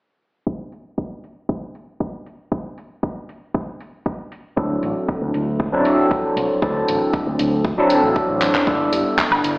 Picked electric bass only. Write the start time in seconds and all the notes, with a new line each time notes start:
4.57 D2
4.83 A1
5.22 D2
5.34 D2
5.73 F#2
6.36 C2
6.62 D2
6.88 A1
7.27 D2
7.39 D2
8.04 A1
8.29 A1
8.55 F#2
8.67 G1
8.92 G2
9.31 G1
9.44 G1